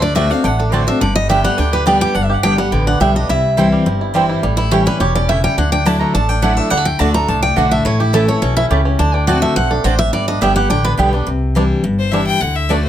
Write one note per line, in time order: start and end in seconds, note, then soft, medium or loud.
0.00 0.31 D2 medium
0.00 0.14 D3 medium
0.00 0.16 A3 medium
0.00 0.15 D4 medium
0.00 0.15 D5 loud
0.15 0.29 D3 medium
0.15 0.30 A3 loud
0.15 0.25 C4 medium
0.15 0.30 C4 medium
0.15 0.30 D4 medium
0.15 0.25 F#4 medium
0.15 0.28 F#4 loud
0.15 0.25 D5 loud
0.15 0.31 E5 medium
0.15 0.25 A5 loud
0.30 0.44 C4 medium
0.30 0.59 D4 medium
0.30 0.43 F#4 medium
0.30 0.45 F5 medium
0.44 0.88 A1 medium
0.44 0.98 A2 medium
0.44 0.84 D3 medium
0.44 0.59 F#5 loud
0.59 0.87 D4 medium
0.59 0.73 A4 medium
0.72 0.86 D3 medium
0.72 0.87 A3 medium
0.72 0.82 C4 medium
0.72 1.01 C4 medium
0.72 0.87 C4 medium
0.72 0.82 F#4 medium
0.72 0.86 F#4 medium
0.72 0.87 C5 medium
0.72 0.82 D5 loud
0.72 0.82 A5 loud
0.87 1.01 C4 medium
0.87 1.29 D4 medium
0.87 1.00 F#4 medium
0.87 1.01 E5 loud
1.01 1.45 G1 medium
1.01 1.55 G2 loud
1.01 1.41 D3 medium
1.01 1.15 D5 medium
1.16 1.43 G3 medium
1.16 1.29 D#5 loud
1.29 1.43 D3 medium
1.29 1.44 G3 loud
1.29 1.39 B3 medium
1.29 1.44 B3 medium
1.29 1.56 D4 medium
1.29 1.39 G4 loud
1.29 1.43 G4 loud
1.29 1.39 D5 loud
1.29 1.44 E5 loud
1.29 1.39 G5 loud
1.44 1.84 G3 medium
1.44 1.58 B3 medium
1.44 1.57 G4 medium
1.44 1.58 F#5 loud
1.58 2.02 D2 medium
1.58 1.85 D3 medium
1.58 1.98 D4 medium
1.58 1.72 G5 loud
1.73 2.00 G4 medium
1.73 1.86 B4 medium
1.86 2.13 D3 medium
1.86 2.15 G3 medium
1.86 2.14 G3 loud
1.86 1.96 B3 loud
1.86 2.14 B3 loud
1.86 1.96 G4 loud
1.86 2.14 G4 medium
1.86 2.01 D5 medium
1.86 1.96 D5 loud
1.86 1.96 G5 loud
2.01 2.15 G4 medium
2.01 2.14 G5 loud
2.14 2.37 G1 medium
2.14 2.70 G2 medium
2.14 2.43 D4 medium
2.14 2.24 F#5 medium
2.24 2.34 E5 medium
2.30 3.70 G4 medium
2.34 2.43 F#5 medium
2.43 2.68 G1 medium
2.43 2.58 D3 medium
2.43 2.58 G3 medium
2.43 2.53 B3 medium
2.43 2.58 B3 medium
2.43 2.84 D4 medium
2.43 2.53 G4 medium
2.43 2.57 G4 medium
2.43 2.53 D5 medium
2.43 2.58 G5 loud
2.43 2.53 G5 loud
2.58 3.00 G3 medium
2.58 2.73 B3 soft
2.58 2.72 G4 medium
2.58 2.72 F#5 medium
2.72 2.96 A1 medium
2.72 2.99 D3 medium
2.72 3.13 B3 medium
2.72 2.87 G5 loud
2.87 3.14 D4 medium
2.87 3.00 F#5 medium
3.00 3.25 B1 medium
3.00 3.15 D3 medium
3.00 3.72 G3 medium
3.00 3.15 G3 medium
3.00 3.10 B3 medium
3.00 3.15 B3 medium
3.00 3.10 G4 loud
3.00 3.14 G4 medium
3.00 3.10 D5 medium
3.00 3.15 E5 medium
3.00 3.10 G5 loud
3.15 3.29 B3 medium
3.15 3.29 D4 medium
3.15 3.28 G4 medium
3.15 3.29 D#5 medium
3.29 3.73 C2 medium
3.29 3.84 C3 medium
3.29 3.57 E4 medium
3.29 3.83 E5 medium
3.57 3.85 E3 medium
3.57 3.85 G3 loud
3.57 3.67 C4 medium
3.57 3.85 C4 loud
3.57 3.67 E4 medium
3.57 4.01 E4 medium
3.57 3.86 E4 loud
3.57 3.67 C5 medium
3.57 3.67 G5 medium
3.72 4.12 G3 medium
3.86 4.30 G1 medium
3.86 4.40 G2 medium
3.86 4.27 C4 medium
4.01 4.29 E4 medium
4.14 4.41 E3 medium
4.14 4.42 G3 medium
4.14 4.24 C4 medium
4.14 4.42 C4 medium
4.14 4.24 E4 medium
4.14 4.42 E4 medium
4.14 4.24 C5 loud
4.14 4.24 G5 loud
4.29 4.58 E4 medium
4.43 4.87 A1 medium
4.43 4.97 A2 medium
4.43 4.83 G3 medium
4.57 4.71 E4 medium
4.57 4.97 E4 medium
4.71 4.86 E3 medium
4.71 4.86 G3 loud
4.71 4.81 A3 medium
4.71 5.12 C#4 medium
4.71 4.86 C#4 medium
4.71 4.81 E4 medium
4.71 4.85 E4 medium
4.71 4.86 G4 medium
4.71 4.81 C#5 loud
4.71 4.81 G5 loud
4.86 5.26 G3 medium
4.86 5.00 C#4 medium
4.86 4.99 E4 medium
4.86 5.00 B4 loud
5.00 5.44 E1 medium
5.00 5.27 B2 medium
5.00 5.41 G4 medium
5.00 5.15 C#5 medium
5.15 5.55 C#4 medium
5.15 5.29 D5 loud
5.28 5.56 C#3 medium
5.28 5.38 A3 loud
5.28 5.38 E4 loud
5.28 5.57 E4 medium
5.28 5.38 C#5 loud
5.28 5.43 E5 medium
5.28 5.39 G5 loud
5.44 5.57 G3 medium
5.44 5.57 G5 loud
5.57 6.01 D2 medium
5.57 6.12 D3 medium
5.57 5.71 D4 medium
5.57 5.72 F#5 medium
5.72 5.85 D4 medium
5.72 5.86 G5 loud
5.86 6.13 F#3 medium
5.86 5.95 A3 medium
5.86 6.13 A3 loud
5.86 6.13 D4 medium
5.86 6.13 D4 loud
5.86 5.95 E4 medium
5.86 6.14 E4 loud
5.86 5.95 D5 loud
5.86 5.96 F#5 loud
5.86 6.00 A5 medium
6.00 6.42 A3 medium
6.00 6.14 A#5 loud
6.14 6.59 A1 medium
6.14 6.69 A2 medium
6.14 6.28 D4 medium
6.14 6.29 A5 medium
6.29 6.56 D4 medium
6.29 6.42 G5 loud
6.42 6.70 F#3 medium
6.42 6.52 A3 medium
6.42 6.71 A3 medium
6.42 6.70 A3 medium
6.42 6.70 D4 medium
6.42 6.52 E4 loud
6.42 6.71 E4 medium
6.42 6.52 D5 loud
6.42 6.57 F#5 medium
6.42 6.52 F#5 loud
6.57 6.71 D4 medium
6.57 6.70 E5 loud
6.70 6.93 D2 medium
6.70 6.98 D3 medium
6.70 6.77 G3 medium
6.70 6.85 F#5 medium
6.77 7.00 A3 medium
6.85 6.99 G5 loud
6.99 7.24 D2 medium
6.99 7.14 D3 medium
6.99 7.09 A3 medium
6.99 7.14 A3 medium
6.99 7.27 D4 medium
6.99 7.14 D4 medium
6.99 7.09 F#4 loud
6.99 7.13 F#4 loud
6.99 7.09 D5 loud
6.99 7.10 F#5 loud
6.99 7.14 A5 loud
7.14 7.72 A3 medium
7.14 7.28 D4 soft
7.14 7.27 F#4 medium
7.14 7.28 A#5 loud
7.28 7.53 C2 medium
7.28 7.83 A2 medium
7.28 7.42 D4 medium
7.28 7.42 A5 loud
7.43 7.56 D4 medium
7.43 7.57 G5 loud
7.56 7.81 B1 medium
7.56 7.84 D3 medium
7.56 7.66 A3 loud
7.56 7.84 A3 medium
7.56 7.85 D4 medium
7.56 7.84 D4 medium
7.56 7.66 F#4 loud
7.56 7.85 F#4 loud
7.56 7.66 D5 loud
7.56 7.71 F#5 medium
7.56 7.66 F#5 loud
7.71 8.03 A3 medium
7.71 7.85 E5 medium
7.85 8.29 A1 medium
7.85 8.39 A2 medium
7.85 8.12 E4 medium
7.85 8.00 C#5 medium
8.00 8.13 E4 medium
8.00 8.39 G4 medium
8.13 8.28 E3 medium
8.13 8.23 A3 medium
8.13 8.28 A3 medium
8.13 8.28 C#4 loud
8.13 8.54 E4 medium
8.13 8.23 E4 medium
8.13 8.27 E4 medium
8.13 8.28 A4 medium
8.13 8.23 C#5 loud
8.13 8.23 A5 loud
8.28 8.68 A3 medium
8.28 8.42 C#4 medium
8.28 8.41 E4 medium
8.28 8.41 C#5 medium
8.42 8.66 B1 medium
8.42 8.69 B2 medium
8.42 8.82 C#4 medium
8.42 8.56 C#5 medium
8.57 8.96 E4 medium
8.57 8.65 E5 loud
8.70 8.95 C#2 medium
8.70 8.98 C#3 medium
8.70 8.80 A3 medium
8.70 8.80 E4 medium
8.70 8.99 G4 medium
8.70 8.80 C#5 medium
8.70 8.80 A5 loud
8.85 8.99 C#4 medium
8.99 9.43 D2 medium
8.99 9.26 D3 medium
8.99 9.14 D4 medium
8.99 9.14 A5 medium
9.14 9.27 D4 medium
9.14 9.27 G5 loud
9.27 9.54 D3 medium
9.27 9.55 A3 medium
9.27 9.37 C4 medium
9.27 9.55 C4 medium
9.27 9.70 D4 medium
9.27 9.37 F#4 medium
9.27 9.56 F#4 loud
9.27 9.37 D5 loud
9.27 9.42 F#5 loud
9.27 9.37 A5 loud
9.42 9.82 A3 medium
9.42 9.55 E5 loud
9.56 9.80 B1 medium
9.56 9.83 B2 medium
9.56 9.96 C4 medium
9.56 9.70 F#5 loud
9.71 9.84 D4 medium
9.71 9.84 A4 medium
9.84 10.09 A1 medium
9.84 10.12 A2 medium
9.84 9.94 C4 medium
9.84 10.28 D4 medium
9.84 9.94 F#4 loud
9.84 9.99 C5 medium
9.84 9.94 D5 loud
9.84 9.94 A5 loud
9.99 10.13 C4 medium
9.99 10.12 E5 loud
10.13 10.35 G1 loud
10.13 10.67 G2 medium
10.13 10.40 G3 medium
10.13 10.27 D5 medium
10.28 10.68 D4 medium
10.28 10.41 D#5 loud
10.41 10.66 G1 medium
10.41 10.55 D3 medium
10.41 10.82 G3 medium
10.41 10.56 G3 medium
10.41 10.51 B3 medium
10.41 10.56 B3 loud
10.41 10.51 G4 loud
10.41 10.55 G4 loud
10.41 10.51 D5 loud
10.41 10.55 E5 medium
10.41 10.51 G5 loud
10.56 10.70 B3 soft
10.56 10.69 G4 medium
10.56 10.96 G4 medium
10.56 10.69 F#5 loud
10.70 10.94 A1 medium
10.70 10.96 D3 medium
10.70 11.10 D4 medium
10.70 10.85 G5 loud
10.84 11.24 B3 medium
10.84 10.93 B4 loud
10.97 11.23 B1 medium
10.97 11.12 D3 medium
10.97 11.13 G3 medium
10.97 11.27 G3 medium
10.97 11.08 B3 loud
10.97 11.13 B3 loud
10.97 11.08 G4 medium
10.97 11.11 G4 loud
10.97 11.08 D5 loud
10.97 11.08 G5 loud
11.13 11.27 B3 medium
11.13 11.27 D4 medium
11.13 11.26 G4 medium
11.27 11.71 C2 medium
11.27 11.81 C3 medium
11.55 11.82 E3 medium
11.55 11.83 G3 loud
11.55 11.62 G3 medium
11.55 11.63 C4 medium
11.55 11.83 D4 medium
11.55 11.63 D4 medium
11.55 11.83 E4 medium
11.84 12.28 G1 medium
11.84 12.38 G2 medium
11.99 12.13 C5 medium
12.11 12.39 E3 medium
12.11 12.40 G3 medium
12.11 12.19 G3 medium
12.11 12.20 C4 medium
12.11 12.40 D4 medium
12.11 12.20 D4 medium
12.11 12.40 E4 medium
12.11 12.26 E5 loud
12.27 12.42 G5 loud
12.41 12.85 D2 medium
12.41 12.68 D3 medium
12.41 12.57 F#5 loud
12.56 12.71 E5 loud
12.69 12.89 D3 medium
12.69 12.89 A3 medium
12.69 12.76 A3 medium
12.69 12.89 D4 loud
12.69 12.77 D4 medium
12.69 12.89 F#4 loud
12.69 12.84 D5 medium
12.84 12.89 C5 medium